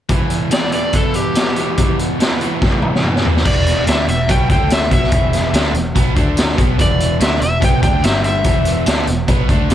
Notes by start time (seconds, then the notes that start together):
0.09 E2 B2 E3, kick, closed hi-hat
0.30 closed hi-hat
0.51 E2 B2 E3 D5, snare, closed hi-hat
0.72 E2 B2 E3 D5, closed hi-hat
0.93 E2 B2 E3 A4, kick, closed hi-hat
1.14 G4, closed hi-hat
1.35 E2 B2 E3, snare, closed hi-hat
1.56 E2 B2 E3, closed hi-hat
1.78 E2 B2 E3, kick, closed hi-hat
1.99 closed hi-hat
2.20 E2 B2 E3, snare, closed hi-hat
2.41 E2 B2 E3, closed hi-hat
2.61 E2 B2 E3, kick, snare
2.72 high tom
2.82 mid tom
2.95 snare
3.03 E2 B2 E3, mid tom
3.16 snare
3.24 E2 B2 E3, floor tom
3.37 snare
3.45 E1 E2 B2 E3 D5, kick, crash
3.67 snare, closed hi-hat
3.87 D2 D3 A3 D4 E5, snare, closed hi-hat
4.08 E1 E2 B2 E5, closed hi-hat
4.28 B1 B2 F#3 B3 G5, kick, closed hi-hat
4.50 D2 D3 A3 D4 G5, kick, closed hi-hat
4.70 E5, snare, closed hi-hat
4.91 B1 B2 F#3 B3 E5, kick, closed hi-hat
5.03 snare
5.12 E1 E2 B2 E3, kick, closed hi-hat
5.33 snare, closed hi-hat
5.53 D2 D3 A3 D4, snare, closed hi-hat
5.74 E1 E2 B2, closed hi-hat
5.95 B1 B2 F#3 B3, kick, closed hi-hat
6.15 D2 D3 A3 D4, kick, closed hi-hat
6.37 snare, closed hi-hat
6.57 B1 B2 F#3 B3, kick, closed hi-hat
6.78 E1 E2 B2 E3 D5, kick, closed hi-hat
7.00 closed hi-hat
7.19 D2 D3 A3 D4 E5, snare, closed hi-hat
7.40 E1 E2 B2 E5, closed hi-hat
7.60 B1 B2 F#3 B3, kick, closed hi-hat
7.64 G5
7.82 D2 D3 A3 D4 G5, kick, closed hi-hat
8.03 G1 G2 D3 G3 E5, snare, closed hi-hat
8.24 E5, closed hi-hat
8.44 E1 E2 B2 E3, kick, closed hi-hat
8.65 closed hi-hat
8.86 D2 D3 A3 D4, snare, closed hi-hat
9.07 E1 E2 B2, closed hi-hat
9.28 B1 B2 F#3 B3, kick, closed hi-hat
9.49 D2 D3 A3 D4, kick, closed hi-hat
9.69 G1 G2 D3 G3, closed hi-hat